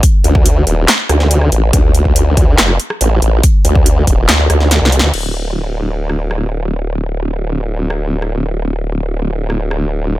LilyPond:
<<
  \new Staff \with { instrumentName = "Wobble bass" } { \clef bass \time 4/4 \key d \phrygian \tempo 4 = 141 r8 d,4 ees,,8 r8 d,4 a,,8 | d,2 f,,8 r8 a,,8 a,,8 | r8 d,4 ees,,8 d,8 d,8. c,8 d,16 | d,,1~ |
d,,1~ | d,,1 | }
  \new DrumStaff \with { instrumentName = "Drums" } \drummode { \time 4/4 <hh bd>8 hh16 bd16 hh8 hh8 <hc hh sn>8 <hh ss>16 sn16 hh16 ss16 hh8 | <hh bd>8 hh16 bd16 hh8 <hh bd>8 <hc hh sn>16 ss16 hh16 ss16 hh8 hh8 | <hh bd>8 hh16 bd16 hh8 <hh bd>8 <hc hh sn>8 <hh ss>16 sn16 \tuplet 3/2 { <hh sn>16 r16 sn16 hh16 sn16 r16 } | cymc4 r4 r16 ss8 ss16 r4 |
r4 r4 r8 ss8 r16 ss8. | r4 r4 r16 ss8 ss16 r4 | }
>>